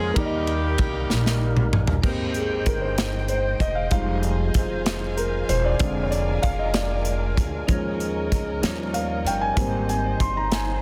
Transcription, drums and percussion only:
0.16 kick, ride bell
0.47 ride bell
0.78 kick, ride bell
1.10 snare
1.26 snare
1.57 mid tom
1.73 mid tom
1.87 floor tom
2.03 kick, crash
2.34 closed hi-hat
2.66 kick, closed hi-hat
2.98 snare, closed hi-hat
3.28 closed hi-hat
3.60 kick, closed hi-hat
3.91 kick, closed hi-hat
4.23 closed hi-hat
4.54 kick, closed hi-hat
4.86 snare, closed hi-hat
5.18 closed hi-hat
5.49 closed hi-hat
5.79 kick, closed hi-hat
6.12 closed hi-hat
6.43 kick, closed hi-hat
6.74 snare, closed hi-hat
7.05 closed hi-hat
7.37 kick, closed hi-hat
7.68 kick, closed hi-hat
8.00 closed hi-hat
8.32 kick, closed hi-hat
8.63 snare, closed hi-hat
8.94 closed hi-hat
9.27 closed hi-hat
9.57 kick, closed hi-hat
9.89 closed hi-hat
10.20 kick, closed hi-hat
10.52 snare, closed hi-hat

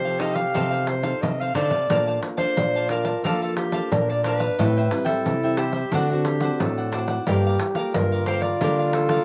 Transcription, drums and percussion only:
0.06 pandeiro
0.20 pandeiro
0.36 pandeiro
0.55 pandeiro
0.73 pandeiro
0.87 pandeiro
1.03 pandeiro
1.23 pandeiro
1.41 pandeiro
1.55 pandeiro
1.71 pandeiro
1.90 pandeiro
2.08 pandeiro
2.23 pandeiro
2.38 pandeiro
2.57 pandeiro
2.75 pandeiro
2.89 pandeiro
3.05 pandeiro
3.25 pandeiro
3.43 pandeiro
3.57 pandeiro
3.72 pandeiro
3.92 pandeiro
4.10 pandeiro
4.24 pandeiro
4.40 pandeiro
4.59 pandeiro
4.77 pandeiro
4.91 pandeiro
5.06 pandeiro
5.26 pandeiro
5.43 pandeiro
5.57 pandeiro
5.73 pandeiro
5.92 pandeiro
6.10 pandeiro
6.25 pandeiro
6.40 pandeiro
6.60 pandeiro
6.78 pandeiro
6.93 pandeiro
7.08 pandeiro
7.27 pandeiro
7.45 pandeiro
7.60 pandeiro
7.75 pandeiro
7.94 pandeiro
8.12 pandeiro
8.26 pandeiro
8.42 pandeiro
8.61 pandeiro
8.79 pandeiro
8.93 pandeiro
9.09 pandeiro

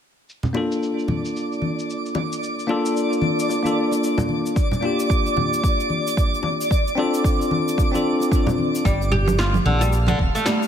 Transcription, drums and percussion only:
0.29 shaker
0.43 low conga, shaker
0.54 high bongo
0.72 shaker
0.83 shaker
0.99 shaker
1.08 high conga, low conga
1.25 shaker
1.36 shaker
1.52 shaker
1.62 high conga
1.79 shaker
1.90 shaker
2.06 shaker
2.15 high bongo, high conga
2.32 shaker
2.43 shaker
2.59 shaker
2.69 high bongo
2.86 shaker
2.97 shaker
3.13 shaker
3.22 high conga
3.40 shaker
3.49 high bongo, shaker
3.65 high conga, shaker
3.91 high bongo, shaker
4.04 shaker
4.18 high bongo, low conga, shaker
4.29 high conga
4.46 shaker
4.56 kick, shaker
4.72 low conga, shaker
4.83 high bongo
5.00 shaker
5.10 kick, shaker
5.26 shaker
5.36 high conga, low conga
5.53 shaker
5.64 kick, shaker
5.80 shaker
5.90 high conga
6.07 shaker
6.17 kick, shaker
6.34 shaker
6.43 high bongo, high conga
6.61 shaker
6.71 kick, shaker
6.88 shaker
6.98 high bongo
7.14 shaker
7.24 kick, shaker
7.41 shaker
7.51 high conga
7.68 shaker
7.78 kick, high bongo, shaker
7.94 high conga, shaker
8.20 high bongo, shaker
8.32 kick, shaker
8.46 high bongo, low conga, shaker
8.58 high conga
8.75 shaker
8.85 kick, shaker
9.02 shaker
9.12 low conga
9.28 low conga, shaker
9.39 snare, shaker
9.54 low conga, shaker
9.66 high conga
9.81 high bongo, shaker
9.93 shaker
10.07 low conga, shaker
10.19 kick, high conga
10.35 high bongo, shaker
10.46 snare, shaker
10.63 shaker

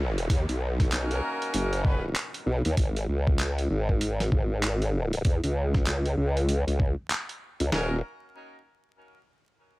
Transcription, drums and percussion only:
0.18 closed hi-hat
0.30 kick, closed hi-hat
0.49 closed hi-hat
0.80 kick, snare, closed hi-hat
0.92 clap, closed hi-hat
1.11 closed hi-hat
1.42 closed hi-hat
1.54 closed hi-hat
1.73 closed hi-hat
1.85 kick
2.15 clap, closed hi-hat
2.34 closed hi-hat
2.65 closed hi-hat
2.77 kick, closed hi-hat
2.96 closed hi-hat
3.27 kick
3.39 clap, closed hi-hat
3.58 closed hi-hat
3.89 kick
4.01 closed hi-hat
4.20 snare, closed hi-hat
4.32 kick
4.63 clap, closed hi-hat
4.82 closed hi-hat
5.13 closed hi-hat
5.25 kick, closed hi-hat
5.44 closed hi-hat
5.74 kick, snare
5.87 clap, closed hi-hat
6.06 closed hi-hat
6.37 closed hi-hat
6.49 closed hi-hat
6.68 closed hi-hat
6.80 kick
7.10 clap, closed hi-hat
7.29 closed hi-hat
7.60 closed hi-hat
7.72 snare

